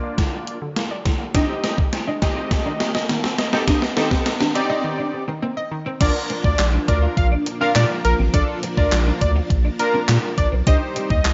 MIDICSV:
0, 0, Header, 1, 11, 480
1, 0, Start_track
1, 0, Key_signature, -2, "major"
1, 0, Tempo, 582524
1, 1110, Time_signature, 4, 2, 24, 8
1, 9339, End_track
2, 0, Start_track
2, 0, Title_t, "Analog synth lead"
2, 0, Program_c, 0, 81
2, 4950, Note_on_c, 0, 74, 105
2, 5033, Note_off_c, 0, 74, 0
2, 5311, Note_on_c, 0, 74, 79
2, 5477, Note_off_c, 0, 74, 0
2, 5670, Note_on_c, 0, 74, 82
2, 5753, Note_off_c, 0, 74, 0
2, 5910, Note_on_c, 0, 77, 89
2, 5993, Note_off_c, 0, 77, 0
2, 6270, Note_on_c, 0, 77, 81
2, 6353, Note_off_c, 0, 77, 0
2, 6390, Note_on_c, 0, 74, 87
2, 6473, Note_off_c, 0, 74, 0
2, 6630, Note_on_c, 0, 70, 89
2, 6713, Note_off_c, 0, 70, 0
2, 6870, Note_on_c, 0, 74, 104
2, 6953, Note_off_c, 0, 74, 0
2, 7231, Note_on_c, 0, 74, 88
2, 7396, Note_off_c, 0, 74, 0
2, 7591, Note_on_c, 0, 74, 92
2, 7674, Note_off_c, 0, 74, 0
2, 8071, Note_on_c, 0, 70, 81
2, 8236, Note_off_c, 0, 70, 0
2, 8551, Note_on_c, 0, 74, 85
2, 8633, Note_off_c, 0, 74, 0
2, 8792, Note_on_c, 0, 75, 109
2, 8874, Note_off_c, 0, 75, 0
2, 9151, Note_on_c, 0, 75, 79
2, 9316, Note_off_c, 0, 75, 0
2, 9339, End_track
3, 0, Start_track
3, 0, Title_t, "Synth keys"
3, 0, Program_c, 1, 88
3, 0, Note_on_c, 1, 58, 87
3, 0, Note_on_c, 1, 62, 76
3, 0, Note_on_c, 1, 65, 81
3, 0, Note_on_c, 1, 74, 92
3, 472, Note_off_c, 1, 58, 0
3, 473, Note_off_c, 1, 62, 0
3, 473, Note_off_c, 1, 65, 0
3, 474, Note_off_c, 1, 74, 0
3, 1107, Note_on_c, 1, 60, 83
3, 1108, Note_on_c, 1, 63, 80
3, 1110, Note_on_c, 1, 67, 84
3, 1111, Note_on_c, 1, 75, 97
3, 1531, Note_off_c, 1, 60, 0
3, 1531, Note_off_c, 1, 63, 0
3, 1532, Note_off_c, 1, 67, 0
3, 1533, Note_off_c, 1, 75, 0
3, 1827, Note_on_c, 1, 60, 91
3, 1828, Note_on_c, 1, 63, 77
3, 1830, Note_on_c, 1, 67, 82
3, 1831, Note_on_c, 1, 75, 98
3, 2391, Note_off_c, 1, 60, 0
3, 2392, Note_off_c, 1, 63, 0
3, 2393, Note_off_c, 1, 67, 0
3, 2394, Note_off_c, 1, 75, 0
3, 2907, Note_on_c, 1, 60, 88
3, 2908, Note_on_c, 1, 63, 82
3, 2910, Note_on_c, 1, 67, 84
3, 2911, Note_on_c, 1, 69, 96
3, 2979, Note_off_c, 1, 60, 0
3, 2980, Note_off_c, 1, 63, 0
3, 2980, Note_off_c, 1, 67, 0
3, 2981, Note_off_c, 1, 69, 0
3, 3026, Note_on_c, 1, 60, 85
3, 3028, Note_on_c, 1, 63, 82
3, 3030, Note_on_c, 1, 67, 85
3, 3031, Note_on_c, 1, 75, 95
3, 3169, Note_off_c, 1, 60, 0
3, 3170, Note_off_c, 1, 63, 0
3, 3171, Note_off_c, 1, 67, 0
3, 3171, Note_off_c, 1, 75, 0
3, 3267, Note_on_c, 1, 60, 88
3, 3269, Note_on_c, 1, 63, 80
3, 3270, Note_on_c, 1, 67, 80
3, 3271, Note_on_c, 1, 69, 101
3, 3550, Note_off_c, 1, 60, 0
3, 3551, Note_off_c, 1, 63, 0
3, 3552, Note_off_c, 1, 67, 0
3, 3552, Note_off_c, 1, 69, 0
3, 3747, Note_on_c, 1, 60, 85
3, 3749, Note_on_c, 1, 63, 82
3, 3750, Note_on_c, 1, 67, 79
3, 3752, Note_on_c, 1, 74, 99
3, 4312, Note_off_c, 1, 60, 0
3, 4312, Note_off_c, 1, 63, 0
3, 4313, Note_off_c, 1, 67, 0
3, 4314, Note_off_c, 1, 74, 0
3, 4948, Note_on_c, 1, 62, 80
3, 4949, Note_on_c, 1, 65, 73
3, 4951, Note_on_c, 1, 70, 86
3, 5371, Note_off_c, 1, 62, 0
3, 5372, Note_off_c, 1, 65, 0
3, 5373, Note_off_c, 1, 70, 0
3, 5668, Note_on_c, 1, 62, 79
3, 5670, Note_on_c, 1, 65, 75
3, 5672, Note_on_c, 1, 70, 88
3, 6021, Note_off_c, 1, 62, 0
3, 6022, Note_off_c, 1, 65, 0
3, 6023, Note_off_c, 1, 70, 0
3, 6268, Note_on_c, 1, 62, 79
3, 6270, Note_on_c, 1, 65, 73
3, 6272, Note_on_c, 1, 70, 90
3, 6621, Note_off_c, 1, 62, 0
3, 6622, Note_off_c, 1, 65, 0
3, 6623, Note_off_c, 1, 70, 0
3, 6869, Note_on_c, 1, 62, 79
3, 6870, Note_on_c, 1, 65, 72
3, 6873, Note_on_c, 1, 69, 90
3, 7080, Note_off_c, 1, 62, 0
3, 7081, Note_off_c, 1, 65, 0
3, 7083, Note_off_c, 1, 69, 0
3, 7228, Note_on_c, 1, 62, 82
3, 7230, Note_on_c, 1, 65, 69
3, 7232, Note_on_c, 1, 70, 88
3, 7722, Note_off_c, 1, 62, 0
3, 7723, Note_off_c, 1, 65, 0
3, 7724, Note_off_c, 1, 70, 0
3, 8069, Note_on_c, 1, 62, 81
3, 8070, Note_on_c, 1, 65, 71
3, 8072, Note_on_c, 1, 70, 85
3, 8492, Note_off_c, 1, 62, 0
3, 8493, Note_off_c, 1, 65, 0
3, 8493, Note_off_c, 1, 70, 0
3, 8789, Note_on_c, 1, 63, 81
3, 8790, Note_on_c, 1, 67, 76
3, 8792, Note_on_c, 1, 72, 91
3, 9212, Note_off_c, 1, 63, 0
3, 9212, Note_off_c, 1, 67, 0
3, 9214, Note_off_c, 1, 72, 0
3, 9339, End_track
4, 0, Start_track
4, 0, Title_t, "Clean electric guitar"
4, 0, Program_c, 2, 27
4, 1110, Note_on_c, 2, 62, 102
4, 1191, Note_off_c, 2, 62, 0
4, 1350, Note_on_c, 2, 60, 83
4, 1431, Note_off_c, 2, 60, 0
4, 1710, Note_on_c, 2, 62, 83
4, 1791, Note_off_c, 2, 62, 0
4, 1949, Note_on_c, 2, 63, 80
4, 2030, Note_off_c, 2, 63, 0
4, 2189, Note_on_c, 2, 62, 79
4, 2270, Note_off_c, 2, 62, 0
4, 2429, Note_on_c, 2, 60, 76
4, 2510, Note_off_c, 2, 60, 0
4, 2549, Note_on_c, 2, 58, 81
4, 2630, Note_off_c, 2, 58, 0
4, 2909, Note_on_c, 2, 60, 85
4, 2990, Note_off_c, 2, 60, 0
4, 3030, Note_on_c, 2, 62, 100
4, 3110, Note_off_c, 2, 62, 0
4, 3269, Note_on_c, 2, 60, 83
4, 3350, Note_off_c, 2, 60, 0
4, 3629, Note_on_c, 2, 62, 81
4, 3710, Note_off_c, 2, 62, 0
4, 3869, Note_on_c, 2, 63, 88
4, 3950, Note_off_c, 2, 63, 0
4, 4110, Note_on_c, 2, 62, 76
4, 4191, Note_off_c, 2, 62, 0
4, 4349, Note_on_c, 2, 60, 79
4, 4430, Note_off_c, 2, 60, 0
4, 4470, Note_on_c, 2, 58, 85
4, 4550, Note_off_c, 2, 58, 0
4, 4830, Note_on_c, 2, 60, 85
4, 4911, Note_off_c, 2, 60, 0
4, 4950, Note_on_c, 2, 62, 101
4, 5031, Note_off_c, 2, 62, 0
4, 5190, Note_on_c, 2, 60, 85
4, 5271, Note_off_c, 2, 60, 0
4, 5549, Note_on_c, 2, 62, 83
4, 5630, Note_off_c, 2, 62, 0
4, 5790, Note_on_c, 2, 65, 83
4, 5871, Note_off_c, 2, 65, 0
4, 6031, Note_on_c, 2, 62, 77
4, 6111, Note_off_c, 2, 62, 0
4, 6271, Note_on_c, 2, 60, 80
4, 6351, Note_off_c, 2, 60, 0
4, 6391, Note_on_c, 2, 58, 84
4, 6471, Note_off_c, 2, 58, 0
4, 6750, Note_on_c, 2, 60, 84
4, 6831, Note_off_c, 2, 60, 0
4, 6871, Note_on_c, 2, 62, 104
4, 6951, Note_off_c, 2, 62, 0
4, 7111, Note_on_c, 2, 60, 86
4, 7191, Note_off_c, 2, 60, 0
4, 7470, Note_on_c, 2, 62, 82
4, 7551, Note_off_c, 2, 62, 0
4, 7710, Note_on_c, 2, 65, 81
4, 7791, Note_off_c, 2, 65, 0
4, 7950, Note_on_c, 2, 62, 75
4, 8031, Note_off_c, 2, 62, 0
4, 8190, Note_on_c, 2, 60, 80
4, 8271, Note_off_c, 2, 60, 0
4, 8310, Note_on_c, 2, 58, 85
4, 8391, Note_off_c, 2, 58, 0
4, 8669, Note_on_c, 2, 60, 89
4, 8750, Note_off_c, 2, 60, 0
4, 8790, Note_on_c, 2, 62, 102
4, 8871, Note_off_c, 2, 62, 0
4, 9030, Note_on_c, 2, 60, 82
4, 9111, Note_off_c, 2, 60, 0
4, 9339, End_track
5, 0, Start_track
5, 0, Title_t, "Synth pluck"
5, 0, Program_c, 3, 84
5, 30, Note_on_c, 3, 74, 85
5, 95, Note_off_c, 3, 74, 0
5, 150, Note_on_c, 3, 50, 93
5, 215, Note_off_c, 3, 50, 0
5, 509, Note_on_c, 3, 50, 77
5, 574, Note_off_c, 3, 50, 0
5, 630, Note_on_c, 3, 58, 92
5, 695, Note_off_c, 3, 58, 0
5, 750, Note_on_c, 3, 74, 92
5, 815, Note_off_c, 3, 74, 0
5, 870, Note_on_c, 3, 50, 78
5, 935, Note_off_c, 3, 50, 0
5, 990, Note_on_c, 3, 58, 80
5, 1055, Note_off_c, 3, 58, 0
5, 1110, Note_on_c, 3, 51, 96
5, 1175, Note_off_c, 3, 51, 0
5, 1230, Note_on_c, 3, 60, 83
5, 1295, Note_off_c, 3, 60, 0
5, 1350, Note_on_c, 3, 75, 99
5, 1414, Note_off_c, 3, 75, 0
5, 1470, Note_on_c, 3, 51, 75
5, 1535, Note_off_c, 3, 51, 0
5, 1590, Note_on_c, 3, 60, 90
5, 1655, Note_off_c, 3, 60, 0
5, 1711, Note_on_c, 3, 75, 87
5, 1775, Note_off_c, 3, 75, 0
5, 1831, Note_on_c, 3, 51, 83
5, 1895, Note_off_c, 3, 51, 0
5, 2190, Note_on_c, 3, 51, 79
5, 2255, Note_off_c, 3, 51, 0
5, 2430, Note_on_c, 3, 75, 91
5, 2495, Note_off_c, 3, 75, 0
5, 2551, Note_on_c, 3, 51, 90
5, 2615, Note_off_c, 3, 51, 0
5, 2670, Note_on_c, 3, 60, 79
5, 2735, Note_off_c, 3, 60, 0
5, 2790, Note_on_c, 3, 75, 94
5, 2855, Note_off_c, 3, 75, 0
5, 3150, Note_on_c, 3, 75, 96
5, 3215, Note_off_c, 3, 75, 0
5, 3270, Note_on_c, 3, 51, 86
5, 3335, Note_off_c, 3, 51, 0
5, 3391, Note_on_c, 3, 60, 83
5, 3455, Note_off_c, 3, 60, 0
5, 3510, Note_on_c, 3, 75, 97
5, 3575, Note_off_c, 3, 75, 0
5, 3631, Note_on_c, 3, 51, 75
5, 3695, Note_off_c, 3, 51, 0
5, 3870, Note_on_c, 3, 75, 90
5, 3935, Note_off_c, 3, 75, 0
5, 3990, Note_on_c, 3, 51, 96
5, 4055, Note_off_c, 3, 51, 0
5, 4350, Note_on_c, 3, 51, 79
5, 4415, Note_off_c, 3, 51, 0
5, 4470, Note_on_c, 3, 60, 90
5, 4535, Note_off_c, 3, 60, 0
5, 4590, Note_on_c, 3, 75, 92
5, 4655, Note_off_c, 3, 75, 0
5, 4709, Note_on_c, 3, 51, 86
5, 4774, Note_off_c, 3, 51, 0
5, 4829, Note_on_c, 3, 60, 85
5, 4894, Note_off_c, 3, 60, 0
5, 9339, End_track
6, 0, Start_track
6, 0, Title_t, "String machine"
6, 0, Program_c, 4, 50
6, 4950, Note_on_c, 4, 62, 88
6, 4951, Note_on_c, 4, 53, 82
6, 4951, Note_on_c, 4, 58, 75
6, 8757, Note_off_c, 4, 58, 0
6, 8757, Note_off_c, 4, 62, 0
6, 8758, Note_off_c, 4, 53, 0
6, 8791, Note_on_c, 4, 55, 83
6, 8791, Note_on_c, 4, 60, 76
6, 8791, Note_on_c, 4, 63, 89
6, 9339, Note_off_c, 4, 55, 0
6, 9339, Note_off_c, 4, 60, 0
6, 9339, Note_off_c, 4, 63, 0
6, 9339, End_track
7, 0, Start_track
7, 0, Title_t, "Sub bass"
7, 0, Program_c, 5, 38
7, 4950, Note_on_c, 5, 34, 107
7, 5029, Note_off_c, 5, 34, 0
7, 5309, Note_on_c, 5, 38, 92
7, 5389, Note_off_c, 5, 38, 0
7, 5430, Note_on_c, 5, 34, 94
7, 5589, Note_off_c, 5, 34, 0
7, 5671, Note_on_c, 5, 38, 104
7, 5830, Note_off_c, 5, 38, 0
7, 5909, Note_on_c, 5, 34, 97
7, 6069, Note_off_c, 5, 34, 0
7, 6390, Note_on_c, 5, 46, 113
7, 6470, Note_off_c, 5, 46, 0
7, 6630, Note_on_c, 5, 34, 95
7, 6710, Note_off_c, 5, 34, 0
7, 6751, Note_on_c, 5, 33, 90
7, 6830, Note_off_c, 5, 33, 0
7, 6870, Note_on_c, 5, 34, 113
7, 6949, Note_off_c, 5, 34, 0
7, 7229, Note_on_c, 5, 38, 84
7, 7309, Note_off_c, 5, 38, 0
7, 7350, Note_on_c, 5, 34, 107
7, 7510, Note_off_c, 5, 34, 0
7, 7591, Note_on_c, 5, 38, 101
7, 7750, Note_off_c, 5, 38, 0
7, 7829, Note_on_c, 5, 34, 102
7, 7989, Note_off_c, 5, 34, 0
7, 8311, Note_on_c, 5, 46, 114
7, 8390, Note_off_c, 5, 46, 0
7, 8551, Note_on_c, 5, 34, 91
7, 8630, Note_off_c, 5, 34, 0
7, 8671, Note_on_c, 5, 35, 86
7, 8750, Note_off_c, 5, 35, 0
7, 8790, Note_on_c, 5, 36, 121
7, 8870, Note_off_c, 5, 36, 0
7, 9149, Note_on_c, 5, 39, 96
7, 9229, Note_off_c, 5, 39, 0
7, 9272, Note_on_c, 5, 36, 97
7, 9339, Note_off_c, 5, 36, 0
7, 9339, End_track
8, 0, Start_track
8, 0, Title_t, "Downlifter"
8, 0, Program_c, 6, 103
8, 0, Note_on_c, 6, 60, 77
8, 1110, Note_off_c, 6, 60, 0
8, 9339, End_track
9, 0, Start_track
9, 0, Title_t, "Riser"
9, 0, Program_c, 7, 103
9, 0, Note_on_c, 7, 60, 78
9, 3990, Note_off_c, 7, 60, 0
9, 9339, End_track
10, 0, Start_track
10, 0, Title_t, "Muted clean electric guitar strokes"
10, 1470, Note_on_c, 9, 29, 47
10, 1552, Note_off_c, 9, 29, 0
10, 1830, Note_on_c, 9, 29, 49
10, 1912, Note_off_c, 9, 29, 0
10, 2309, Note_on_c, 9, 29, 46
10, 2392, Note_off_c, 9, 29, 0
10, 2669, Note_on_c, 9, 29, 50
10, 2752, Note_off_c, 9, 29, 0
10, 3389, Note_on_c, 9, 29, 46
10, 3472, Note_off_c, 9, 29, 0
10, 3749, Note_on_c, 9, 29, 52
10, 3831, Note_off_c, 9, 29, 0
10, 4229, Note_on_c, 9, 29, 46
10, 4312, Note_off_c, 9, 29, 0
10, 4590, Note_on_c, 9, 29, 49
10, 4672, Note_off_c, 9, 29, 0
10, 5310, Note_on_c, 9, 29, 46
10, 5392, Note_off_c, 9, 29, 0
10, 5670, Note_on_c, 9, 29, 52
10, 5753, Note_off_c, 9, 29, 0
10, 6151, Note_on_c, 9, 29, 47
10, 6233, Note_off_c, 9, 29, 0
10, 6510, Note_on_c, 9, 29, 52
10, 6593, Note_off_c, 9, 29, 0
10, 7230, Note_on_c, 9, 29, 48
10, 7313, Note_off_c, 9, 29, 0
10, 7591, Note_on_c, 9, 29, 50
10, 7673, Note_off_c, 9, 29, 0
10, 8071, Note_on_c, 9, 29, 46
10, 8153, Note_off_c, 9, 29, 0
10, 8430, Note_on_c, 9, 29, 48
10, 8513, Note_off_c, 9, 29, 0
10, 9150, Note_on_c, 9, 29, 49
10, 9233, Note_off_c, 9, 29, 0
10, 9339, End_track
11, 0, Start_track
11, 0, Title_t, "Drums"
11, 148, Note_on_c, 9, 36, 95
11, 150, Note_on_c, 9, 38, 79
11, 151, Note_on_c, 9, 42, 79
11, 231, Note_off_c, 9, 36, 0
11, 232, Note_off_c, 9, 38, 0
11, 233, Note_off_c, 9, 42, 0
11, 390, Note_on_c, 9, 42, 76
11, 473, Note_off_c, 9, 42, 0
11, 630, Note_on_c, 9, 38, 84
11, 630, Note_on_c, 9, 42, 93
11, 712, Note_off_c, 9, 38, 0
11, 713, Note_off_c, 9, 42, 0
11, 869, Note_on_c, 9, 38, 84
11, 870, Note_on_c, 9, 36, 87
11, 870, Note_on_c, 9, 42, 67
11, 952, Note_off_c, 9, 36, 0
11, 952, Note_off_c, 9, 38, 0
11, 952, Note_off_c, 9, 42, 0
11, 1109, Note_on_c, 9, 36, 112
11, 1109, Note_on_c, 9, 42, 115
11, 1110, Note_on_c, 9, 38, 89
11, 1192, Note_off_c, 9, 36, 0
11, 1192, Note_off_c, 9, 38, 0
11, 1192, Note_off_c, 9, 42, 0
11, 1349, Note_on_c, 9, 38, 96
11, 1350, Note_on_c, 9, 42, 70
11, 1431, Note_off_c, 9, 38, 0
11, 1432, Note_off_c, 9, 42, 0
11, 1468, Note_on_c, 9, 36, 105
11, 1550, Note_off_c, 9, 36, 0
11, 1589, Note_on_c, 9, 38, 92
11, 1589, Note_on_c, 9, 42, 84
11, 1671, Note_off_c, 9, 38, 0
11, 1671, Note_off_c, 9, 42, 0
11, 1829, Note_on_c, 9, 38, 93
11, 1831, Note_on_c, 9, 36, 90
11, 1831, Note_on_c, 9, 42, 84
11, 1911, Note_off_c, 9, 38, 0
11, 1913, Note_off_c, 9, 36, 0
11, 1914, Note_off_c, 9, 42, 0
11, 2068, Note_on_c, 9, 36, 95
11, 2069, Note_on_c, 9, 38, 99
11, 2070, Note_on_c, 9, 42, 77
11, 2150, Note_off_c, 9, 36, 0
11, 2152, Note_off_c, 9, 38, 0
11, 2152, Note_off_c, 9, 42, 0
11, 2309, Note_on_c, 9, 38, 105
11, 2310, Note_on_c, 9, 42, 77
11, 2392, Note_off_c, 9, 38, 0
11, 2392, Note_off_c, 9, 42, 0
11, 2429, Note_on_c, 9, 38, 106
11, 2511, Note_off_c, 9, 38, 0
11, 2549, Note_on_c, 9, 38, 97
11, 2549, Note_on_c, 9, 42, 96
11, 2631, Note_off_c, 9, 38, 0
11, 2632, Note_off_c, 9, 42, 0
11, 2669, Note_on_c, 9, 38, 110
11, 2752, Note_off_c, 9, 38, 0
11, 2789, Note_on_c, 9, 38, 105
11, 2790, Note_on_c, 9, 42, 65
11, 2871, Note_off_c, 9, 38, 0
11, 2872, Note_off_c, 9, 42, 0
11, 2908, Note_on_c, 9, 38, 105
11, 2991, Note_off_c, 9, 38, 0
11, 3029, Note_on_c, 9, 36, 120
11, 3029, Note_on_c, 9, 38, 112
11, 3029, Note_on_c, 9, 42, 125
11, 3111, Note_off_c, 9, 36, 0
11, 3111, Note_off_c, 9, 38, 0
11, 3111, Note_off_c, 9, 42, 0
11, 3149, Note_on_c, 9, 38, 109
11, 3231, Note_off_c, 9, 38, 0
11, 3269, Note_on_c, 9, 38, 113
11, 3270, Note_on_c, 9, 42, 73
11, 3352, Note_off_c, 9, 38, 0
11, 3352, Note_off_c, 9, 42, 0
11, 3388, Note_on_c, 9, 36, 101
11, 3389, Note_on_c, 9, 38, 111
11, 3470, Note_off_c, 9, 36, 0
11, 3472, Note_off_c, 9, 38, 0
11, 3510, Note_on_c, 9, 38, 114
11, 3510, Note_on_c, 9, 42, 93
11, 3592, Note_off_c, 9, 38, 0
11, 3592, Note_off_c, 9, 42, 0
11, 3630, Note_on_c, 9, 38, 127
11, 3712, Note_off_c, 9, 38, 0
11, 3752, Note_on_c, 9, 42, 90
11, 3835, Note_off_c, 9, 42, 0
11, 4949, Note_on_c, 9, 42, 122
11, 4950, Note_on_c, 9, 36, 120
11, 4950, Note_on_c, 9, 49, 104
11, 5032, Note_off_c, 9, 36, 0
11, 5032, Note_off_c, 9, 42, 0
11, 5032, Note_off_c, 9, 49, 0
11, 5190, Note_on_c, 9, 42, 72
11, 5273, Note_off_c, 9, 42, 0
11, 5309, Note_on_c, 9, 36, 107
11, 5391, Note_off_c, 9, 36, 0
11, 5429, Note_on_c, 9, 39, 120
11, 5430, Note_on_c, 9, 42, 91
11, 5431, Note_on_c, 9, 38, 93
11, 5511, Note_off_c, 9, 39, 0
11, 5512, Note_off_c, 9, 42, 0
11, 5513, Note_off_c, 9, 38, 0
11, 5671, Note_on_c, 9, 36, 96
11, 5673, Note_on_c, 9, 42, 89
11, 5754, Note_off_c, 9, 36, 0
11, 5755, Note_off_c, 9, 42, 0
11, 5909, Note_on_c, 9, 36, 98
11, 5911, Note_on_c, 9, 42, 80
11, 5991, Note_off_c, 9, 36, 0
11, 5993, Note_off_c, 9, 42, 0
11, 6151, Note_on_c, 9, 42, 82
11, 6233, Note_off_c, 9, 42, 0
11, 6390, Note_on_c, 9, 39, 125
11, 6391, Note_on_c, 9, 38, 95
11, 6391, Note_on_c, 9, 42, 97
11, 6472, Note_off_c, 9, 39, 0
11, 6473, Note_off_c, 9, 42, 0
11, 6474, Note_off_c, 9, 38, 0
11, 6631, Note_on_c, 9, 42, 68
11, 6714, Note_off_c, 9, 42, 0
11, 6870, Note_on_c, 9, 36, 125
11, 6870, Note_on_c, 9, 42, 124
11, 6952, Note_off_c, 9, 36, 0
11, 6952, Note_off_c, 9, 42, 0
11, 7111, Note_on_c, 9, 42, 75
11, 7194, Note_off_c, 9, 42, 0
11, 7229, Note_on_c, 9, 36, 108
11, 7312, Note_off_c, 9, 36, 0
11, 7350, Note_on_c, 9, 39, 115
11, 7351, Note_on_c, 9, 42, 91
11, 7352, Note_on_c, 9, 38, 89
11, 7433, Note_off_c, 9, 39, 0
11, 7433, Note_off_c, 9, 42, 0
11, 7434, Note_off_c, 9, 38, 0
11, 7592, Note_on_c, 9, 36, 94
11, 7593, Note_on_c, 9, 42, 87
11, 7674, Note_off_c, 9, 36, 0
11, 7676, Note_off_c, 9, 42, 0
11, 7829, Note_on_c, 9, 36, 95
11, 7831, Note_on_c, 9, 42, 84
11, 7911, Note_off_c, 9, 36, 0
11, 7914, Note_off_c, 9, 42, 0
11, 8071, Note_on_c, 9, 42, 79
11, 8153, Note_off_c, 9, 42, 0
11, 8310, Note_on_c, 9, 39, 120
11, 8311, Note_on_c, 9, 38, 98
11, 8311, Note_on_c, 9, 42, 95
11, 8392, Note_off_c, 9, 39, 0
11, 8393, Note_off_c, 9, 42, 0
11, 8394, Note_off_c, 9, 38, 0
11, 8551, Note_on_c, 9, 36, 89
11, 8551, Note_on_c, 9, 42, 67
11, 8633, Note_off_c, 9, 36, 0
11, 8633, Note_off_c, 9, 42, 0
11, 8790, Note_on_c, 9, 36, 126
11, 8790, Note_on_c, 9, 42, 121
11, 8873, Note_off_c, 9, 36, 0
11, 8873, Note_off_c, 9, 42, 0
11, 9032, Note_on_c, 9, 42, 74
11, 9114, Note_off_c, 9, 42, 0
11, 9149, Note_on_c, 9, 36, 106
11, 9232, Note_off_c, 9, 36, 0
11, 9270, Note_on_c, 9, 39, 115
11, 9270, Note_on_c, 9, 42, 90
11, 9271, Note_on_c, 9, 38, 93
11, 9339, Note_off_c, 9, 38, 0
11, 9339, Note_off_c, 9, 39, 0
11, 9339, Note_off_c, 9, 42, 0
11, 9339, End_track
0, 0, End_of_file